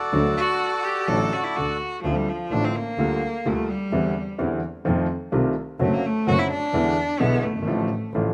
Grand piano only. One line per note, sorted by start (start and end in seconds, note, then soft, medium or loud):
0.13 0.33 D2 medium
0.13 0.33 D3 medium
0.13 0.33 F#3 medium
0.13 0.33 A3 medium
0.13 0.33 F#4 medium
1.08 1.28 A1 medium
1.08 1.28 A2 medium
1.08 1.28 D3 medium
1.08 1.28 F#3 medium
1.08 1.28 A3 medium
1.08 1.29 F#4 medium
1.57 1.77 D2 medium
1.57 1.77 D3 medium
2.05 2.25 D2 medium
2.05 2.25 D3 medium
2.05 2.24 A3 medium
2.05 2.25 C4 medium
2.05 2.25 F4 medium
2.52 2.72 A1 medium
2.52 2.72 A2 medium
2.52 2.72 D3 medium
2.52 2.72 A3 medium
2.52 2.72 C4 medium
2.52 2.72 F4 medium
2.99 3.19 D2 medium
2.99 3.19 D3 medium
2.99 3.19 G3 medium
2.99 3.19 A#3 medium
2.99 3.19 F4 medium
3.46 3.66 D2 medium
3.46 3.65 D3 medium
3.46 3.65 G3 medium
3.46 3.66 A#3 medium
3.46 3.66 F4 medium
3.92 4.12 E2 medium
3.92 4.12 D3 medium
3.92 4.12 E3 medium
3.92 4.12 G3 medium
3.92 4.12 C4 medium
3.92 4.12 E4 medium
4.38 4.59 E2 medium
4.38 4.59 D3 medium
4.38 4.59 E3 medium
4.38 4.59 G3 medium
4.38 4.59 C4 medium
4.38 4.59 E4 medium
4.85 5.06 F2 medium
4.85 5.05 D#3 medium
4.85 5.05 F3 medium
4.85 5.05 A3 medium
4.85 5.05 C4 medium
4.85 5.05 F4 medium
5.32 5.52 C2 medium
5.32 5.52 C3 medium
5.32 5.52 D#3 medium
5.32 5.53 A3 medium
5.32 5.53 C4 medium
5.32 5.53 F4 medium
5.79 6.00 F#2 medium
5.79 6.00 D3 medium
5.79 6.00 F#3 medium
5.79 6.00 A3 medium
5.79 6.00 C4 medium
5.79 6.00 F#4 medium
6.27 6.47 F#2 medium
6.27 6.47 D3 medium
6.27 6.47 F#3 medium
6.27 6.47 A3 medium
6.27 6.47 C4 medium
6.27 6.47 F#4 medium
6.74 6.94 E2 medium
6.74 6.94 D3 medium
6.74 6.94 E3 medium
6.74 6.94 G#3 medium
6.74 6.94 B3 medium
6.74 6.94 E4 medium
7.20 7.40 B1 medium
7.20 7.40 B2 medium
7.20 7.40 D3 medium
7.20 7.40 G#3 medium
7.20 7.40 B3 medium
7.20 7.40 E4 medium
7.50 7.56 F#1 medium
7.56 7.62 G1 medium
7.62 7.68 G#1 medium
7.67 7.87 A1 medium
7.67 7.87 A2 medium
7.67 7.87 D3 medium
7.67 7.87 F3 medium
7.67 7.87 A3 medium
7.67 7.87 F4 medium
8.15 8.34 A1 medium
8.15 8.34 A2 medium
8.15 8.34 D3 medium
8.15 8.34 F3 medium
8.15 8.34 A3 medium
8.15 8.34 F4 medium